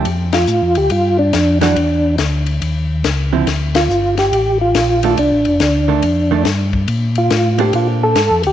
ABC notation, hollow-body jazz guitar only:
X:1
M:4/4
L:1/8
Q:"Swing" 1/4=141
K:F
V:1 name="Hollow-body jazz guitar"
z6 z [E,G,D_G] | z6 z [D,F,CE] | z6 z [_E,A,D] | z3 [_E,A,D] z [E,A,D] z2 |
z3 [B,DAc]3 z2 |]